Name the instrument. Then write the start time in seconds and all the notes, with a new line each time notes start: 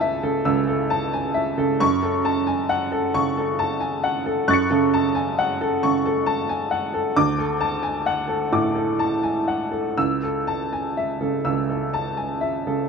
upright piano
Already playing: C#2 A4 G#5 A5 E6
0.01 E5
0.23 C#3 A4
0.45 C#2 E6
0.68 A4
0.90 A5
1.13 G#5
1.34 E5
1.58 C#3 A4
1.80 F#2 C#6
2.03 A4
2.25 A5
2.47 G#5
2.69 F#5
2.92 A4
3.14 C#3 C#6
3.37 A4
3.59 A5
3.80 G#5
4.04 F#5
4.26 A4
4.48 F#2 C#6 F#6 A6
4.53 C#7
4.70 C#3 A4
4.94 A5
5.15 G#5
5.39 F#5
5.61 A4
5.83 C#3 C#6
6.06 A4
6.26 A5
6.49 G#5
6.71 F#5
6.94 A4
7.16 D2 D6
7.38 A4
7.61 A5
7.83 G#5
8.06 F#5
8.28 A4
8.52 A2 D6
8.75 A4
8.99 A5
9.23 G#5
9.48 F#5
9.71 A4
9.97 C#2 E6
10.23 A4
10.47 A5
10.73 G#5
10.97 E5
11.21 C#3 A4
11.45 C#2 E6
11.70 A4
11.94 A5
12.17 G#5
12.41 E5
12.67 C#3 A4